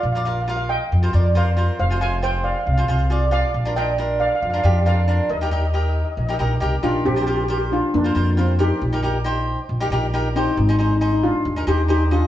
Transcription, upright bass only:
\new Staff \with { instrumentName = "Upright bass" } { \clef bass \time 4/4 \key bes \mixolydian \tempo 4 = 137 bes,,2 f,8 f,4. | f,,2 c,8 c,4. | bes,,2 f,8 f,4. | ees,2 bes,,8 bes,,8 c,8 bes,,8 |
bes,,2 f,8 f,4. | bes,,2 bes,,8 bes,,4. | aes,,2 ees,8 ees,4. | }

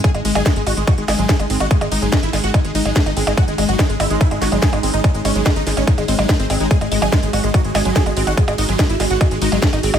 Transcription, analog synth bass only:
\new Staff \with { instrumentName = "Analog synth bass" } { \clef bass \time 4/4 \tempo 4 = 144 r16 gis,,16 gis,,16 gis,,16 r16 gis,,16 gis,,16 gis,,16 r16 gis,,16 gis,,16 gis,,16 r16 gis,,16 gis,,16 gis,,16 | r16 gis,,16 gis,,16 gis,,16 r16 gis,,16 gis,,16 gis,,16 r16 gis,,16 gis,,16 gis,,16 r16 gis,,16 gis,,16 gis,,16 | r16 gis,,16 gis,,16 gis,,16 r16 gis,,16 gis,,16 gis,,16 r16 gis,,16 gis,,16 gis,,16 r16 gis,,16 gis,,16 gis,,16 | r16 gis,,16 gis,,16 gis,,16 r16 gis,,16 gis,,16 gis,,16 r16 gis,,16 gis,,16 gis,,16 r16 gis,,16 gis,,16 gis,,16 |
r16 gis,,16 gis,,16 gis,,16 r16 gis,,16 gis,,16 gis,,16 r16 gis,,16 gis,,16 gis,,16 r16 gis,,16 gis,,16 gis,,16 | r16 gis,,16 gis,,16 gis,,16 r16 gis,,16 gis,,16 gis,,16 r16 gis,,16 gis,,16 gis,,16 r16 gis,,16 gis,,16 gis,,16 | }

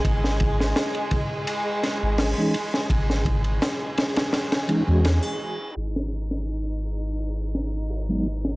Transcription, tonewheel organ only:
\new Staff \with { instrumentName = "Tonewheel organ" } { \time 4/4 \key cis \dorian \tempo 4 = 84 r2. r16 <e gis cis' dis'>16 r8 | r2 r8 <e gis cis' dis'>16 <e gis cis' fis'>16 r4 | r2. r16 <fis gis b dis'>16 r8 | }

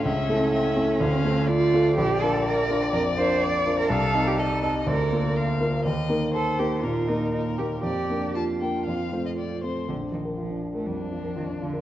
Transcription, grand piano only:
\new Staff \with { instrumentName = "Grand piano" } { \time 4/4 \key d \minor \tempo 4 = 123 cis,8 <a e' a'>4 <a e' a'>8 d,8 <a f' a'>4 <a f' a'>8 | \key bes \major bes,,8 <d' f' bes'>4 <d' f' bes'>8 f,8 <d' f' bes'>4 <d' f' bes'>8 | c,8 <c' ees' ees''>4 <c' ees' ees''>8 d,8 <bes f' bes'>4 <bes f' bes'>8 | ees,8 <bes ees' bes'>4 <bes ees' bes'>8 bes,8 <bes ees' bes'>4 <bes ees' bes'>8 |
f,8 <bes d' bes'>4 <bes d' bes'>8 f,8 <a c' c''>4 <a c' c''>8 | bes,,16 d'16 f16 bes'16 f'16 d'16 f'16 bes'16 f,16 d'16 f16 bes'16 f'16 d'16 f'16 bes'16 | }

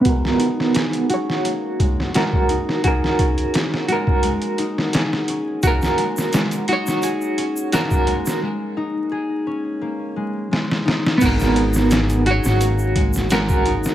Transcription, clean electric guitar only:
\new Staff \with { instrumentName = "Clean electric guitar" } { \time 4/4 \key gis \minor \tempo 4 = 86 <b fis' ais'>4. <fis' cis''>4. <fis' ais'>4 | <fis' ais'>4. <fis' ais'>2~ <fis' ais'>8 | <fis' ais'>4. <fis' cis''>4. <fis' ais'>4 | r1 |
<b fis' ais'>4. <fis' cis''>4. <fis' ais'>4 | }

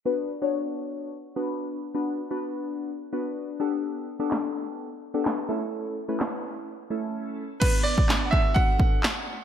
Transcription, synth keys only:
\new Staff \with { instrumentName = "Synth keys" } { \time 4/4 \key b \minor \tempo 4 = 127 <b d' fis' b'>8 r16 <b d' fis' cis''>4. r8 <b d' fis' b'>4 r16 | <b d' fis' b'>8 r16 <b d' fis' b'>4~ <b d' fis' b'>16 r8 <b d' fis' b'>4 <b d' g' a'>8~ | <b d' g' a'>8 r16 <b d' g' a'>4. r8 <b d' g' a'>8. <a cis' e' a'>8~ | <a cis' e' a'>8 r16 <a cis' e' b'>4~ <a cis' e' b'>16 r8 <a cis' e' a'>4 r8 |
<b d' fis' b'>8. r16 <b d' fis' b'>16 r16 <b d' fis' a'>4. r4 | }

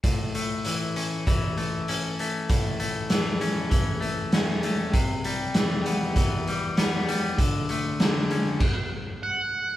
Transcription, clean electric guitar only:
\new Staff \with { instrumentName = "Clean electric guitar" } { \clef bass \time 4/4 \key a \major \tempo 4 = 98 a,8 a8 e8 cis'8 e8 a8 cis'8 a8 | a,8 a8 e8 cis'8 e8 a8 cis'8 a8 | c8 g8 e8 b8 e8 g8 b8 g8 | d8 a8 d8 cis'8 r2 | }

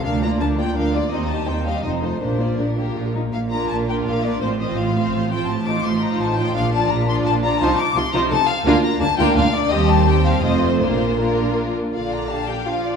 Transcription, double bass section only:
\new Staff \with { instrumentName = "Double bass section" } { \clef bass \time 3/4 \key bes \major \tempo 4 = 168 d,4 d,4 d,4 | ees,4 ees,4 f,,4 | bes,,4 bes,,4 bes,,4 | bes,,4 bes,,4 bes,,4 |
a,,4 a,,4 a,,4 | a,,4 a,,4 a,,4 | bes,,4 bes,,4 bes,,4 | c,8 r8 c,8 c,8 c,8 r8 |
d,8 r8 d,8 d,8 d,8 r8 | ees,2 f,,4 | bes,,2~ bes,,8 r8 | bes,,2. | }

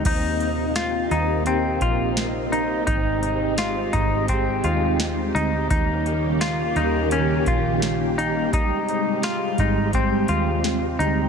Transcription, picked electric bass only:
\new Staff \with { instrumentName = "Picked electric bass" } { \clef bass \time 4/4 \key ees \major \tempo 4 = 85 ees,4. ees,4 bes,,4. | aes,,4. aes,,4 ees,4 d,8 | ees,4. ees,4 bes,,4. | aes,,4. aes,,4 ees,4 d,8 | }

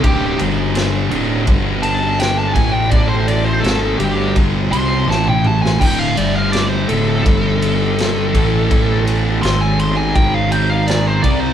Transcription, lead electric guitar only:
\new Staff \with { instrumentName = "Lead electric guitar" } { \time 4/4 \key g \dorian \tempo 4 = 83 g'8 r2 a''8 g''16 a''16 gis''16 g''16 | d''16 c''16 d''16 c''16 a'8 g'8 r8 c'''8 a''16 g''16 a''16 gis''16 | g''16 f''16 d''16 f''16 d''16 c''16 a'2~ a'8~ | a'8 r8 c'''16 gis''16 c'''16 gis''16 g''16 f''16 g''16 f''16 d''16 c''16 d''16 c''16 | }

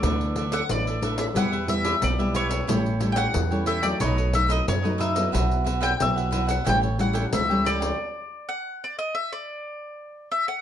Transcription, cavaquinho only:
\new Staff \with { instrumentName = "Cavaquinho" } { \time 4/4 \key a \mixolydian \tempo 4 = 90 <d' a' d'' e''>8 <d' a' d'' e''>16 <d' a' d'' e''>16 r16 <a' d'' e''>16 <d' a' d'' e''>16 <a' d'' e''>16 <e' g' b' e''>16 <g' b' e''>8 <e' g' b' e''>16 r16 <g' b' e''>16 <e' g' b' e''>16 <g' b' e''>16 | <e' a' cis'' g''>8 <e' a' cis'' g''>16 <e' a' cis'' g''>16 r16 <a' cis'' g''>16 <e' a' cis'' g''>16 <a' cis'' g''>16 <dis' a' b' dis''>16 <a' b' dis''>8 <dis' a' b' dis''>16 r16 <a' b' dis''>16 <dis' a' b' dis''>16 <a' b' dis''>16 | <fis' b' e'' fis''>8 <fis' b' e'' fis''>16 <fis' b' e'' fis''>16 r16 <b' e'' fis''>16 <fis' b' e'' fis''>16 <b' e'' fis''>16 <e' a' cis'' g''>16 <a' cis'' g''>8 <e' a' cis'' g''>16 r16 <a' cis'' g''>16 <e' a' cis'' g''>16 <a' cis'' g''>16 | r1 | }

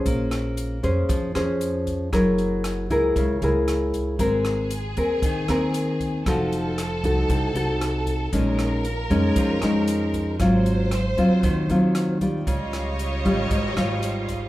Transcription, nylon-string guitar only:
\new Staff \with { instrumentName = "Nylon-string guitar" } { \time 4/4 \key bes \dorian \tempo 4 = 116 << { <des' aes' c''>4. <des' aes' c''>4 <des' aes' c''>4. | <fes' aes' bes'>4. <fes' aes' bes'>4 <fes' aes' bes'>4. | <c' bes'>4 r8 <c' bes'>4 <c' bes'>4. | <ees' ges' a'>4 r8 <ees' ges' a'>4 <ees' ges' a'>4. |
<aes des' ees'>4 r8 <aes des' ees'>4 <aes des' ees'>4. | <ges c' f'>4 r8 <ges c' f'>4 <ges c' f'>4 <g f'>8~ | <g f'>4. <g f'>4 <g f'>4. | } \\ { bes2 f2 | ges2 des2 | aes2 ees2 | f2 c2 |
bes,2 f2 | aes,2 ees2 | des2 aes,2 | } >> }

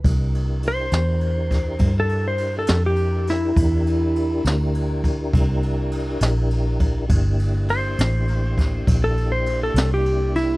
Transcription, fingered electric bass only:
\new Staff \with { instrumentName = "Fingered electric bass" } { \clef bass \time 12/8 \key c \mixolydian \tempo 4. = 68 c,4. e,4. g,4. f,4. | e,4. d,4. c,4. bes,,4. | g,,4. a,,4. bes,,4. c,4. | }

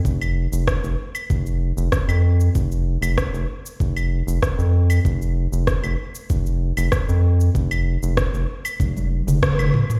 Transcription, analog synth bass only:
\new Staff \with { instrumentName = "Analog synth bass" } { \clef bass \time 4/4 \key c \dorian \tempo 4 = 96 f,,8. f,,8 f,,16 r8 f,,8. f,,16 r16 f,8. | f,,8. f,,8 f,,16 r8 f,,8. f,,16 r16 f,8. | f,,8. f,,8 f,,16 r8 f,,8. f,,16 r16 f,8. | f,,8. f,,8 f,,16 r8 f,,8. f,,16 r16 f,,16 r8 | }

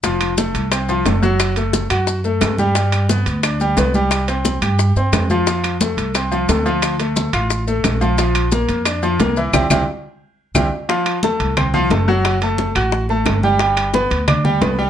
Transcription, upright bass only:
\new Staff \with { instrumentName = "Upright bass" } { \clef bass \time 4/4 \key f \major \tempo 4 = 177 f,,4. c,4. ges,,4~ | ges,,4. ges,4. g,4~ | g,4. d,4. c,4~ | c,4. g,4 r8 f,4~ |
f,4. c,4. d,4~ | d,4. a,,4. bes,,4~ | bes,,4. f,4. c,4 | c,8 c,8 r2 c,8 r8 |
r4. c,4. ges,,4~ | ges,,4. a,,4. g,,4~ | g,,4. d,4. c,4 | }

